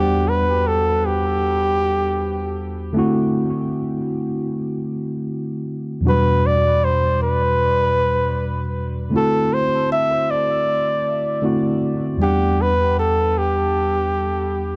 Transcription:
0.00 2.91 E2 medium
0.00 2.92 G3 medium
0.00 2.93 B3 medium
0.00 2.94 D4 medium
0.00 0.11 F#4 soft
0.00 0.30 G4 loud
0.00 0.10 C5 medium
0.00 2.94 F#5 medium
0.29 0.69 B4 medium
0.67 1.07 A4 medium
1.06 2.59 G4 medium
2.93 5.99 D3 medium
2.93 6.00 A3 medium
2.93 6.00 C4 medium
2.97 6.01 E4 medium
2.97 6.02 F#4 medium
6.01 9.07 E2 medium
6.01 9.09 B2 medium
6.01 6.12 F#3 soft
6.05 9.11 G3 medium
6.05 9.09 D4 medium
6.05 9.10 F#4 medium
6.05 6.48 B4 loud
6.46 6.86 D5 medium
6.84 7.22 C5 medium
7.22 8.72 B4 loud
9.10 11.39 D3 medium
9.10 11.39 A3 medium
9.10 11.40 C4 medium
9.14 11.41 E4 medium
9.14 11.41 F#4 medium
9.14 9.55 A4 medium
9.54 9.91 C5 medium
9.92 10.32 E5 medium
10.31 11.45 D5 medium
11.42 12.20 D3 medium
11.42 12.20 A3 medium
11.42 12.21 C4 medium
11.42 12.21 E4 medium
11.42 12.22 F#4 medium
12.17 14.76 E2 medium
12.17 14.76 G3 medium
12.17 14.76 B3 medium
12.22 14.76 D4 medium
12.22 12.63 G4 loud
12.22 14.76 F#5 medium
12.62 12.99 B4 medium
12.99 13.40 A4 medium
13.38 14.76 G4 medium

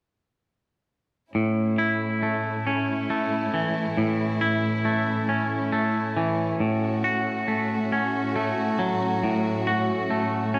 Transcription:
1.33 6.56 A2 soft
1.33 3.97 A2 soft
1.33 6.56 A3 soft
1.33 10.60 C#4 soft
1.33 6.55 E4 soft
1.78 3.97 E4 soft
2.23 3.10 A3 soft
2.67 5.28 C#4 soft
3.10 4.85 A3 soft
3.54 5.73 E3 soft
3.97 6.60 A2 soft
4.41 6.60 E4 soft
4.85 5.72 A3 soft
5.29 7.92 C#4 soft
5.72 7.47 A3 soft
6.17 6.60 E3 soft
6.60 9.23 A2 soft
6.60 10.60 A2 medium
6.60 10.60 A3 soft
6.60 10.60 F#4 medium
7.04 9.24 F#4 soft
7.48 8.35 A3 soft
7.92 10.54 C#4 soft
8.36 10.10 A3 soft
8.79 10.60 F#3 soft
9.24 10.60 A2 soft
9.67 10.60 F#4 soft
10.11 10.60 A3 soft
10.54 10.60 C#4 soft

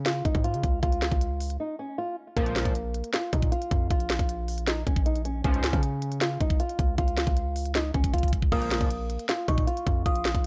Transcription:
0.00 0.22 C#3 loud
0.06 0.23 F4 medium
0.06 snare loud
0.06 closed hi-hat medium
0.25 0.34 C2 loud
0.25 0.42 D#4 medium
0.25 kick loud
0.25 closed hi-hat medium
0.35 0.55 G#2 loud
0.35 kick loud
0.35 closed hi-hat medium
0.44 0.80 F4 medium
0.44 closed hi-hat medium
0.54 0.63 C#3 loud
0.54 closed hi-hat medium
0.63 0.82 C#2 loud
0.63 kick loud
0.63 closed hi-hat medium
0.83 1.10 C#2 loud
0.83 1.56 F4 loud
0.83 kick loud
0.83 closed hi-hat medium
0.92 closed hi-hat medium
1.02 snare loud
1.02 closed hi-hat medium
1.12 1.58 C#2 loud
1.12 kick loud
1.12 closed hi-hat medium
1.21 closed hi-hat medium
1.40 open hi-hat medium
1.50 closed hi-hat medium
1.60 1.77 D#4 medium
1.79 1.96 C#4 medium
1.98 2.15 F4 medium
2.36 2.64 A#1 loud
2.36 2.73 C#2 loud
2.36 2.73 A#2 loud
2.36 2.73 F3 loud
2.36 3.09 A#3 loud
2.36 kick loud
2.36 closed hi-hat medium
2.46 closed hi-hat medium
2.56 snare loud
2.56 closed hi-hat medium
2.65 3.02 A#1 loud
2.65 kick loud
2.65 closed hi-hat medium
2.75 closed hi-hat medium
2.94 closed hi-hat medium
3.04 closed hi-hat medium
3.13 3.31 F4 medium
3.13 snare loud
3.13 closed hi-hat medium
3.33 3.51 A#2 loud
3.33 3.50 D#4 medium
3.33 kick loud
3.33 closed hi-hat medium
3.42 kick loud
3.42 closed hi-hat medium
3.52 3.88 F4 medium
3.52 closed hi-hat medium
3.62 closed hi-hat medium
3.71 3.90 F2 loud
3.71 kick loud
3.71 closed hi-hat medium
3.90 4.18 A#1 loud
3.90 4.63 F4 loud
3.90 kick loud
3.90 closed hi-hat medium
4.00 closed hi-hat medium
4.10 snare loud
4.10 closed hi-hat medium
4.19 4.84 A#1 loud
4.19 kick loud
4.19 closed hi-hat medium
4.29 closed hi-hat medium
4.48 open hi-hat medium
4.58 closed hi-hat medium
4.67 4.84 D#4 medium
4.67 snare loud
4.67 closed hi-hat medium
4.87 5.42 A#1 loud
4.87 5.04 C#4 medium
4.87 kick loud
4.87 closed hi-hat medium
4.96 kick loud
4.96 closed hi-hat medium
5.06 5.23 D#4 medium
5.06 closed hi-hat medium
5.15 closed hi-hat medium
5.25 5.42 C#4 medium
5.25 closed hi-hat medium
5.44 5.72 C#2 loud
5.44 5.81 C#2 loud
5.44 5.81 G#2 loud
5.44 5.81 F3 loud
5.44 6.17 C#4 loud
5.44 kick loud
5.44 closed hi-hat medium
5.54 closed hi-hat medium
5.64 snare loud
5.64 closed hi-hat medium
5.73 6.38 C#3 loud
5.73 kick loud
5.73 closed hi-hat medium
5.83 closed hi-hat medium
6.02 closed hi-hat medium
6.12 closed hi-hat medium
6.21 6.38 F4 medium
6.21 snare loud
6.21 closed hi-hat medium
6.40 6.59 C2 loud
6.40 6.57 D#4 medium
6.40 kick loud
6.40 closed hi-hat medium
6.50 kick loud
6.50 closed hi-hat medium
6.60 6.96 F4 medium
6.60 closed hi-hat medium
6.69 closed hi-hat medium
6.79 6.97 C#2 loud
6.79 kick loud
6.79 closed hi-hat medium
6.98 7.26 C#2 loud
6.98 7.71 F4 loud
6.98 kick loud
6.98 closed hi-hat medium
7.08 closed hi-hat medium
7.17 snare loud
7.17 closed hi-hat medium
7.27 7.92 C#2 loud
7.27 kick loud
7.27 closed hi-hat medium
7.37 closed hi-hat medium
7.56 open hi-hat medium
7.65 closed hi-hat medium
7.75 7.92 D#4 medium
7.75 snare loud
7.75 closed hi-hat medium
7.94 8.50 C#2 loud
7.94 8.11 C#4 medium
7.94 kick medium
7.94 closed hi-hat medium
8.04 kick loud
8.04 closed hi-hat medium
8.13 8.30 F4 medium
8.13 kick medium
8.13 closed hi-hat medium
8.18 closed hi-hat medium
8.23 kick medium
8.23 closed hi-hat medium
8.28 closed hi-hat medium
8.33 kick loud
8.33 closed hi-hat medium
8.42 kick loud
8.52 8.80 A#1 loud
8.52 8.89 C#2 medium
8.52 8.89 A#2 loud
8.52 8.89 F3 loud
8.52 9.25 A#3 loud
8.52 8.88 D#6 loud
8.52 kick loud
8.52 crash medium
8.62 closed hi-hat medium
8.71 snare loud
8.71 closed hi-hat medium
8.81 9.18 A#1 loud
8.81 kick loud
8.81 closed hi-hat medium
8.90 closed hi-hat medium
9.10 closed hi-hat medium
9.19 closed hi-hat medium
9.29 9.46 F4 medium
9.29 snare loud
9.29 closed hi-hat medium
9.48 9.67 A#2 loud
9.48 9.65 D#4 medium
9.48 10.02 C#6 medium
9.48 kick loud
9.48 closed hi-hat medium
9.58 kick loud
9.58 closed hi-hat medium
9.67 10.03 F4 medium
9.67 closed hi-hat medium
9.77 closed hi-hat medium
9.87 10.05 F2 loud
9.87 kick loud
9.87 closed hi-hat medium
10.06 10.34 A#1 loud
10.06 10.47 F4 loud
10.06 10.42 D#6 loud
10.06 kick loud
10.06 closed hi-hat medium
10.15 closed hi-hat medium
10.25 snare loud
10.25 closed hi-hat medium
10.35 10.47 A#1 loud
10.35 kick loud
10.35 closed hi-hat medium

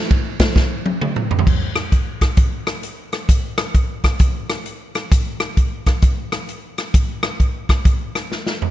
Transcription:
0.11 kick medium
0.11 ride bell medium
0.40 kick medium
0.40 snare loud
0.40 ride bell medium
0.56 kick loud
0.56 snare medium
0.86 high tom medium
1.01 mid tom medium
1.16 mid tom medium
1.31 floor tom medium
1.39 floor tom medium
1.47 kick loud
1.47 crash medium
1.76 cross-stick medium
1.76 closed hi-hat soft
1.92 kick medium
1.92 closed hi-hat medium
2.21 kick medium
2.21 cross-stick medium
2.21 closed hi-hat medium
2.37 kick loud
2.37 closed hi-hat medium
2.67 cross-stick medium
2.67 closed hi-hat medium
2.83 closed hi-hat medium
3.12 cross-stick medium
3.12 closed hi-hat soft
3.29 kick medium
3.29 closed hi-hat medium
3.58 cross-stick loud
3.58 closed hi-hat medium
3.75 kick medium
3.75 closed hi-hat medium
4.04 kick medium
4.04 cross-stick medium
4.04 closed hi-hat medium
4.19 kick loud
4.19 closed hi-hat medium
4.50 cross-stick medium
4.50 closed hi-hat medium
4.66 closed hi-hat medium
4.95 cross-stick medium
4.95 closed hi-hat soft
5.12 kick loud
5.12 closed hi-hat medium
5.40 cross-stick medium
5.40 closed hi-hat medium
5.57 kick medium
5.57 closed hi-hat medium
5.86 kick medium
5.86 cross-stick medium
5.86 closed hi-hat medium
6.02 kick medium
6.02 closed hi-hat medium
6.32 cross-stick medium
6.32 closed hi-hat medium
6.49 closed hi-hat medium
6.78 cross-stick medium
6.78 closed hi-hat medium
6.94 kick loud
6.94 closed hi-hat medium
7.23 cross-stick loud
7.23 closed hi-hat medium
7.40 kick medium
7.40 closed hi-hat medium
7.69 kick medium
7.69 cross-stick medium
7.69 closed hi-hat medium
7.85 kick loud
7.85 closed hi-hat medium
8.15 cross-stick medium
8.15 closed hi-hat medium
8.32 snare soft
8.47 snare medium
8.62 floor tom medium

